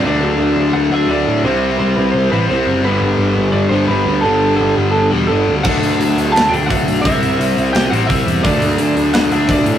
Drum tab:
CC |--------|--------|--------|--------|
HH |--------|--------|--------|--------|
SD |--------|--------|--------|--------|
BD |--------|--------|--------|--------|

CC |x-------|--------|--------|
HH |-ooooooo|oooooooo|oooooooo|
SD |----o---|----o---|----o---|
BD |o-----o-|o-----o-|o-----o-|